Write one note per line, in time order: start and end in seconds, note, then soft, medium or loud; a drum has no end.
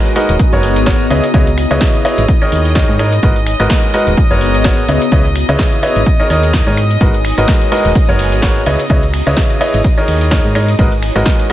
0.00 0.13 G#3 medium
0.00 1.58 B3 medium
0.00 0.12 D#4 medium
0.00 0.13 F#4 medium
0.00 1.58 F#4 medium
0.00 0.13 G#4 medium
0.00 0.13 A#4 medium
0.00 0.13 B4 medium
0.00 0.13 D#5 loud
0.00 11.53 D#5 medium
0.00 1.10 A#5 medium
0.00 11.53 D#6 medium
0.05 closed hi-hat soft
0.05 tambourine soft
0.16 0.34 G#3 medium
0.16 0.34 F#4 medium
0.16 0.34 G#4 medium
0.16 0.34 A#4 medium
0.16 0.34 B4 medium
0.16 0.34 D#5 loud
0.16 open hi-hat loud
0.29 0.37 D#1 medium
0.29 closed hi-hat medium
0.29 tambourine medium
0.39 kick loud
0.39 closed hi-hat medium
0.39 tambourine medium
0.53 0.78 F#1 loud
0.53 0.84 G#3 medium
0.53 0.84 F#4 medium
0.53 0.84 G#4 medium
0.53 0.84 A#4 medium
0.53 0.84 B4 medium
0.53 0.84 C#5 medium
0.53 tambourine soft
0.63 open hi-hat loud
0.76 1.07 G#1 loud
0.76 closed hi-hat medium
0.76 tambourine medium
0.86 1.04 F#4 medium
0.86 1.04 G#4 medium
0.86 1.04 A#4 medium
0.86 1.04 B4 medium
0.86 1.04 C#5 loud
0.86 kick loud
0.86 snare loud
0.86 closed hi-hat medium
0.86 tambourine medium
1.00 tambourine soft
1.10 1.21 C#2 loud
1.10 1.22 C#3 medium
1.10 1.22 E4 medium
1.10 1.22 G#4 medium
1.10 1.22 B4 medium
1.10 1.22 C#5 medium
1.10 1.22 D#5 medium
1.10 open hi-hat loud
1.24 closed hi-hat medium
1.24 tambourine medium
1.34 1.66 C#2 loud
1.34 1.46 C#3 medium
1.34 1.46 E4 medium
1.34 1.46 G#4 medium
1.34 1.46 B4 medium
1.34 1.46 C#5 medium
1.34 1.46 D#5 medium
1.34 kick loud
1.34 closed hi-hat medium
1.34 tambourine medium
1.47 closed hi-hat soft
1.47 tambourine soft
1.58 finger snap medium
1.58 open hi-hat loud
1.71 1.79 C#2 loud
1.71 2.02 C#3 medium
1.71 2.02 E4 medium
1.71 2.02 G#4 medium
1.71 2.02 B4 medium
1.71 2.02 C#5 medium
1.71 2.02 D#5 medium
1.71 closed hi-hat medium
1.71 tambourine medium
1.81 kick loud
1.81 snare loud
1.81 closed hi-hat medium
1.81 tambourine medium
1.94 closed hi-hat soft
1.94 tambourine soft
2.05 2.23 E4 loud
2.05 2.23 G#4 medium
2.05 2.23 B4 medium
2.05 2.23 C#5 medium
2.05 2.23 D#5 loud
2.05 open hi-hat loud
2.18 2.26 G#1 medium
2.18 closed hi-hat medium
2.18 tambourine medium
2.28 3.90 D#4 medium
2.28 kick loud
2.28 closed hi-hat medium
2.28 tambourine medium
2.42 2.73 D#3 medium
2.42 2.73 D#4 medium
2.42 2.73 G#4 medium
2.42 2.73 A#4 medium
2.42 2.73 C#5 medium
2.42 2.73 D#5 medium
2.42 tambourine soft
2.52 2.84 D#2 medium
2.52 open hi-hat loud
2.65 closed hi-hat medium
2.65 tambourine medium
2.75 2.93 D#3 medium
2.75 2.93 D#4 medium
2.75 2.93 G#4 medium
2.75 2.93 A#4 medium
2.75 2.93 C#5 medium
2.75 2.93 D#5 loud
2.75 kick loud
2.75 snare loud
2.75 closed hi-hat medium
2.75 tambourine medium
2.89 3.19 G#2 loud
2.89 tambourine soft
2.99 3.11 G#3 medium
2.99 3.11 D#4 medium
2.99 3.11 G#4 medium
2.99 3.11 A#4 medium
2.99 3.11 C#5 medium
2.99 3.11 D#5 medium
2.99 finger snap medium
2.99 open hi-hat loud
3.13 closed hi-hat medium
3.13 tambourine medium
3.23 3.55 G#1 loud
3.23 3.35 G#3 medium
3.23 3.35 F#4 medium
3.23 5.36 F#4 medium
3.23 3.35 G#4 medium
3.23 3.35 A#4 medium
3.23 3.35 B4 medium
3.23 3.35 D#5 medium
3.23 kick loud
3.23 closed hi-hat medium
3.23 tambourine medium
3.36 4.88 A#5 medium
3.36 closed hi-hat soft
3.36 tambourine soft
3.47 finger snap medium
3.47 open hi-hat loud
3.55 5.36 B3 medium
3.60 3.68 G#1 loud
3.60 3.91 G#3 medium
3.60 3.91 F#4 medium
3.60 3.91 G#4 medium
3.60 3.91 A#4 medium
3.60 3.91 B4 medium
3.60 3.91 D#5 medium
3.60 closed hi-hat medium
3.60 tambourine medium
3.70 kick loud
3.70 snare loud
3.70 closed hi-hat medium
3.70 tambourine medium
3.83 closed hi-hat soft
3.83 tambourine soft
3.94 4.12 G#3 loud
3.94 4.12 F#4 medium
3.94 4.12 G#4 medium
3.94 4.12 A#4 medium
3.94 4.12 B4 medium
3.94 4.12 D#5 loud
3.94 open hi-hat loud
4.07 4.15 D#1 medium
4.07 closed hi-hat medium
4.07 tambourine medium
4.17 kick loud
4.17 closed hi-hat medium
4.17 tambourine medium
4.31 4.56 F#1 loud
4.31 4.62 G#3 medium
4.31 4.62 F#4 medium
4.31 4.62 G#4 medium
4.31 4.62 A#4 medium
4.31 4.62 B4 medium
4.31 4.62 C#5 medium
4.31 tambourine soft
4.41 open hi-hat loud
4.54 4.84 G#1 loud
4.54 closed hi-hat medium
4.54 tambourine medium
4.64 4.82 F#4 medium
4.64 4.82 G#4 medium
4.64 4.82 A#4 medium
4.64 4.82 B4 medium
4.64 4.83 C#5 loud
4.64 kick loud
4.64 snare loud
4.64 closed hi-hat medium
4.64 tambourine medium
4.78 tambourine soft
4.88 4.98 C#2 loud
4.88 5.00 C#3 medium
4.88 5.00 E4 medium
4.88 5.00 G#4 medium
4.88 5.00 B4 medium
4.88 5.00 C#5 medium
4.88 5.00 D#5 medium
4.88 open hi-hat loud
5.02 closed hi-hat medium
5.02 tambourine medium
5.12 5.44 C#2 loud
5.12 5.24 C#3 medium
5.12 5.24 E4 medium
5.12 5.24 G#4 medium
5.12 5.24 B4 medium
5.12 5.24 C#5 medium
5.12 5.24 D#5 medium
5.12 kick loud
5.12 closed hi-hat medium
5.12 tambourine medium
5.25 closed hi-hat soft
5.25 tambourine soft
5.36 finger snap medium
5.36 open hi-hat loud
5.49 5.57 C#2 loud
5.49 5.80 C#3 medium
5.49 5.80 E4 medium
5.49 5.80 G#4 medium
5.49 5.80 B4 medium
5.49 5.80 C#5 medium
5.49 5.80 D#5 loud
5.49 closed hi-hat soft
5.49 tambourine medium
5.59 kick loud
5.59 snare loud
5.59 closed hi-hat medium
5.59 tambourine medium
5.72 closed hi-hat soft
5.72 tambourine soft
5.83 6.01 E4 medium
5.83 6.01 G#4 medium
5.83 6.01 B4 medium
5.83 6.01 C#5 medium
5.83 6.01 D#5 loud
5.83 open hi-hat loud
5.96 6.04 G#1 medium
5.96 closed hi-hat medium
5.96 tambourine medium
6.06 7.68 D#4 medium
6.06 kick loud
6.06 closed hi-hat medium
6.06 tambourine medium
6.20 6.28 D#3 medium
6.20 6.28 D#4 medium
6.20 6.28 G#4 medium
6.20 6.28 A#4 medium
6.20 6.28 C#5 medium
6.20 6.28 D#5 medium
6.20 tambourine soft
6.30 6.62 D#2 medium
6.30 6.64 D#3 medium
6.30 6.64 D#4 medium
6.30 6.64 G#4 medium
6.30 6.64 A#4 medium
6.30 6.64 C#5 medium
6.30 6.64 D#5 medium
6.30 open hi-hat loud
6.43 closed hi-hat medium
6.43 tambourine medium
6.53 kick loud
6.53 snare loud
6.53 closed hi-hat medium
6.53 tambourine medium
6.67 6.97 G#2 loud
6.67 6.76 D#3 medium
6.67 6.76 D#4 medium
6.67 6.76 G#4 medium
6.67 6.76 A#4 medium
6.67 6.76 C#5 medium
6.67 6.76 D#5 medium
6.67 tambourine soft
6.77 finger snap medium
6.77 open hi-hat loud
6.91 closed hi-hat medium
6.91 tambourine medium
7.01 7.33 G#1 loud
7.01 7.13 G#3 medium
7.01 9.14 F#4 medium
7.01 7.13 F#4 medium
7.01 7.13 G#4 medium
7.01 7.13 A#4 medium
7.01 7.13 B4 medium
7.01 7.13 D#5 medium
7.01 kick loud
7.01 closed hi-hat medium
7.01 tambourine medium
7.14 closed hi-hat soft
7.14 tambourine soft
7.25 finger snap medium
7.25 open hi-hat loud
7.25 ride medium
7.38 7.46 G#1 loud
7.38 7.69 G#3 medium
7.38 7.69 F#4 medium
7.38 7.69 G#4 medium
7.38 7.69 A#4 medium
7.38 7.69 B4 medium
7.38 7.69 D#5 loud
7.38 closed hi-hat soft
7.38 tambourine medium
7.46 9.14 B3 medium
7.46 kick loud
7.46 snare loud
7.46 closed hi-hat medium
7.46 tambourine medium
7.61 closed hi-hat soft
7.61 tambourine soft
7.72 7.89 G#3 medium
7.72 7.89 F#4 medium
7.72 7.89 G#4 medium
7.72 7.89 A#4 medium
7.72 7.89 B4 medium
7.72 7.89 D#5 loud
7.72 open hi-hat loud
7.72 ride medium
7.85 7.93 D#1 medium
7.85 closed hi-hat medium
7.85 tambourine medium
7.95 kick loud
7.95 closed hi-hat medium
7.95 tambourine medium
8.09 8.34 F#1 loud
8.09 8.40 G#3 medium
8.09 8.40 F#4 medium
8.09 8.40 G#4 medium
8.09 8.40 A#4 medium
8.09 8.40 B4 medium
8.09 8.40 C#5 medium
8.09 tambourine soft
8.19 open hi-hat loud
8.19 ride medium
8.32 8.62 G#1 loud
8.32 closed hi-hat medium
8.32 tambourine medium
8.42 8.60 F#4 medium
8.42 8.60 G#4 medium
8.42 8.60 A#4 medium
8.42 8.60 B4 medium
8.42 8.60 C#5 loud
8.42 kick loud
8.42 snare loud
8.42 closed hi-hat medium
8.42 tambourine medium
8.56 tambourine soft
8.66 8.76 C#2 loud
8.66 8.78 C#3 medium
8.66 8.78 E4 medium
8.66 8.78 G#4 medium
8.66 8.78 B4 medium
8.66 8.78 C#5 medium
8.66 8.78 D#5 medium
8.66 open hi-hat loud
8.66 ride medium
8.79 closed hi-hat medium
8.79 tambourine medium
8.90 9.22 C#2 loud
8.90 9.02 C#3 medium
8.90 9.02 E4 medium
8.90 9.02 G#4 medium
8.90 9.02 B4 medium
8.90 9.02 C#5 medium
8.90 9.02 D#5 medium
8.90 kick loud
8.90 closed hi-hat medium
8.90 tambourine medium
9.03 closed hi-hat soft
9.03 tambourine soft
9.14 finger snap medium
9.14 open hi-hat loud
9.14 ride medium
9.27 9.35 C#2 loud
9.27 9.58 C#3 medium
9.27 9.58 E4 medium
9.27 9.58 G#4 medium
9.27 9.58 B4 medium
9.27 9.58 C#5 medium
9.27 9.58 D#5 loud
9.27 closed hi-hat medium
9.27 tambourine medium
9.37 kick loud
9.37 snare loud
9.37 closed hi-hat medium
9.37 tambourine medium
9.50 closed hi-hat soft
9.50 tambourine soft
9.61 9.78 E4 medium
9.61 9.78 G#4 medium
9.61 9.78 B4 medium
9.61 9.78 C#5 medium
9.61 9.78 D#5 loud
9.61 open hi-hat loud
9.61 ride medium
9.74 9.82 G#1 loud
9.74 closed hi-hat medium
9.74 tambourine medium
9.84 11.46 D#4 medium
9.84 kick loud
9.84 closed hi-hat medium
9.84 tambourine medium
9.96 10.29 D#3 medium
9.96 10.29 D#4 medium
9.96 10.29 G#4 medium
9.96 10.29 A#4 medium
9.96 11.46 C#5 medium
9.96 10.29 C#5 medium
9.96 10.29 D#5 medium
9.96 tambourine soft
10.08 10.40 D#2 medium
10.08 open hi-hat loud
10.08 ride medium
10.21 closed hi-hat medium
10.21 tambourine medium
10.31 10.49 D#3 medium
10.31 10.49 D#4 medium
10.31 10.49 G#4 medium
10.31 10.49 A#4 medium
10.31 10.49 C#5 medium
10.31 10.49 D#5 loud
10.31 kick loud
10.31 snare loud
10.31 closed hi-hat medium
10.31 tambourine medium
10.45 10.75 G#2 loud
10.45 tambourine soft
10.55 10.67 G#3 medium
10.55 10.67 D#4 medium
10.55 10.67 G#4 medium
10.55 10.67 A#4 medium
10.55 10.67 C#5 medium
10.55 10.67 D#5 loud
10.55 finger snap medium
10.55 open hi-hat loud
10.55 ride medium
10.68 closed hi-hat medium
10.68 tambourine medium
10.79 11.11 G#1 loud
10.79 10.91 G#3 medium
10.79 10.91 F#4 medium
10.79 11.53 F#4 medium
10.79 10.91 G#4 medium
10.79 10.91 A#4 medium
10.79 10.91 B4 medium
10.79 10.91 D#5 medium
10.79 kick loud
10.79 closed hi-hat medium
10.79 tambourine medium
10.92 closed hi-hat soft
10.92 tambourine soft
11.03 finger snap medium
11.03 open hi-hat loud
11.03 ride medium
11.16 11.24 G#1 loud
11.16 11.47 G#3 medium
11.16 11.47 F#4 medium
11.16 11.47 G#4 medium
11.16 11.47 A#4 medium
11.16 11.47 B4 medium
11.16 11.47 D#5 loud
11.16 closed hi-hat medium
11.16 tambourine medium
11.26 kick loud
11.26 snare loud
11.26 closed hi-hat medium
11.26 tambourine medium
11.39 closed hi-hat soft
11.39 tambourine soft